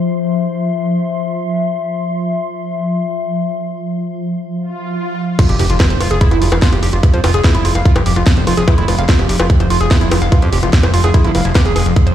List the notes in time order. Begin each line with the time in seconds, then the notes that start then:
Already playing: F3 F4 C5 E5
4.57 swell
5.39 F3 F4, kick, closed hi-hat, crash, impact
5.49 F1 G4, closed hi-hat
5.59 F1 G4, open hi-hat, high bongo
5.70 F1 F4, closed hi-hat
5.80 kick, snare, closed hi-hat, high bongo
5.85 F5
5.90 F1 C5, closed hi-hat
6.00 F1 F4, open hi-hat, high bongo
6.11 F1 G#4, closed hi-hat
6.21 E4, kick, closed hi-hat
6.31 F1 E4, closed hi-hat, high bongo
6.42 F1 F4, open hi-hat
6.52 F1 F5, closed hi-hat, high bongo
6.62 F4, kick, snare, closed hi-hat
6.72 F1 G4, closed hi-hat, high bongo
6.83 F1 G4, open hi-hat
6.93 F1 F4, closed hi-hat
7.03 kick, closed hi-hat, high bongo
7.13 F2 C5, closed hi-hat
7.24 F1 F4, open hi-hat, high bongo
7.34 F1 G#4, closed hi-hat
7.44 E4, kick, snare, closed hi-hat, high bongo
7.55 F1 E4, closed hi-hat
7.65 F1 F4, open hi-hat
7.75 F1 F5, closed hi-hat, high bongo
7.85 F4, kick, closed hi-hat
7.96 G1 G4, closed hi-hat, high bongo
8.06 F1 G4, open hi-hat
8.16 F1 F4, closed hi-hat, high bongo
8.27 kick, snare, closed hi-hat
8.37 F1 C5, closed hi-hat
8.47 F1 F4, open hi-hat, high bongo
8.57 F1 G#4, closed hi-hat
8.68 E4, kick, closed hi-hat, high bongo
8.78 F1 E4, closed hi-hat
8.88 F1 F4, open hi-hat, high bongo
8.98 F1 F5, closed hi-hat
9.09 F4, kick, snare, closed hi-hat
9.19 F1 G4, closed hi-hat, high bongo
9.29 F1 G4, open hi-hat
9.40 F1 F4, closed hi-hat, high bongo
9.50 kick, closed hi-hat
9.60 F1 C5, closed hi-hat, high bongo
9.70 F1 F4, open hi-hat
9.81 F1 G#4, closed hi-hat
9.91 E4, kick, snare, closed hi-hat, high bongo
10.01 F1 E4, closed hi-hat
10.11 F1 F4, open hi-hat, high bongo
10.22 F1 F5, closed hi-hat
10.32 F4, kick, closed hi-hat, high bongo
10.42 F2 G4, closed hi-hat
10.53 F1 G4, open hi-hat
10.63 F1 F4, closed hi-hat, high bongo
10.73 kick, snare, closed hi-hat
10.83 F1 C5, closed hi-hat, high bongo
10.94 F1 F4, open hi-hat
11.04 F1 G#4, closed hi-hat, high bongo
11.14 E4, kick, closed hi-hat
11.24 G1 E4, closed hi-hat
11.35 F1 F5, open hi-hat, high bongo
11.45 F1 E4, closed hi-hat
11.55 G4, kick, snare, closed hi-hat, high bongo
11.66 F1 G#4, closed hi-hat
11.76 F1 G#4, open hi-hat, high bongo
11.86 F1, closed hi-hat
11.96 kick, closed hi-hat
12.07 F1 C5, closed hi-hat